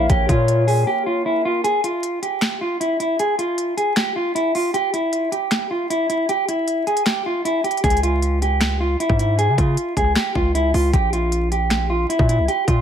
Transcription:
Already playing: A#3 A#4 C#5 F5
0.10 A#1 G4 C#5, kick, closed hi-hat
0.29 A#2 F4, kick, closed hi-hat
0.48 closed hi-hat
0.67 G#4, open hi-hat
0.87 G4
1.06 F4
1.26 E4
1.45 F4
1.64 G#4, closed hi-hat
1.84 F4, closed hi-hat
2.03 closed hi-hat
2.22 G4, closed hi-hat
2.41 finger snap, snare, closed hi-hat
2.61 F4
2.80 E4, closed hi-hat
3.00 E4, closed hi-hat
3.19 G#4, closed hi-hat
3.39 F4, closed hi-hat
3.58 closed hi-hat
3.77 G#4, closed hi-hat
3.96 G4, finger snap, snare, closed hi-hat
4.16 F4
4.35 E4, closed hi-hat
4.55 F4, open hi-hat
4.74 G4, closed hi-hat
4.93 E4, closed hi-hat
5.13 closed hi-hat
5.32 G4, closed hi-hat
5.51 finger snap, snare, closed hi-hat
5.71 F4
5.90 E4, closed hi-hat
6.09 E4, closed hi-hat
6.29 G4, closed hi-hat
6.48 E4, closed hi-hat
6.68 closed hi-hat
6.87 G#4, closed hi-hat
6.97 closed hi-hat
7.06 G4, finger snap, snare, closed hi-hat
7.26 F4
7.45 E4, closed hi-hat
7.64 G4, closed hi-hat
7.71 closed hi-hat
7.77 closed hi-hat
7.84 C#2 G#4, kick, closed hi-hat
7.90 closed hi-hat
7.97 closed hi-hat
8.03 F4, closed hi-hat
8.22 closed hi-hat
8.42 G4, closed hi-hat
8.61 finger snap, snare, closed hi-hat
8.80 F4
9.00 E4, closed hi-hat
9.10 G#2, kick
9.19 E4, closed hi-hat
9.39 G#4, closed hi-hat
9.48 C#3
9.58 C#3 F4, kick, closed hi-hat
9.77 closed hi-hat
9.97 C#2 G#4, kick, closed hi-hat
10.15 G4, finger snap, snare, closed hi-hat
10.35 C#2 F4, kick
10.55 E4, closed hi-hat
10.74 C#2 F4, open hi-hat
10.94 A#1 G4, kick, closed hi-hat
11.13 F4, closed hi-hat
11.32 closed hi-hat
11.52 G4, closed hi-hat
11.70 finger snap, snare, closed hi-hat
11.90 F4
12.09 E4, closed hi-hat
12.19 A#2, kick
12.29 E4, closed hi-hat
12.39 C2
12.48 G4, closed hi-hat
12.68 A#2 F4, kick, closed hi-hat

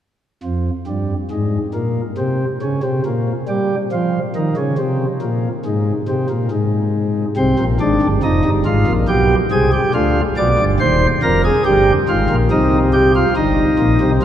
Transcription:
0.43 F2
0.87 G2
1.31 G#2
1.74 A#2
2.18 C3
2.62 C#3
2.83 C3
3.06 A#2
3.49 G3
3.92 F3
4.36 D#3
4.57 C#3
4.78 C3
5.22 A#2
5.65 G#2
6.08 C3
6.30 A#2
6.51 G#2
7.37 C2 C3 C4
7.59 A#1 A#2
7.80 G#1 G#2 D4
8.02 G1 G2
8.23 F1 F2 D#4
8.44 G1 G2
8.66 G#1 G#2 F4
8.87 A#1 A#2
9.08 B1 B2 G4
9.52 C2 C3 G#4
9.73 G4
9.94 D2 D3 F4
10.37 B1 B2 D5
10.59 G1 G2
10.80 D#1 D#2 C5
11.23 F1 F2 A#4
11.45 G#4
11.66 G1 G2 G4
12.09 G#1 G#2 F4
12.29 A#1 A#2
12.51 C2 C3 D#4
12.93 G4
13.16 F4
13.36 G1 G2 D#4
13.79 A#1 A#2
14.01 C2 C3

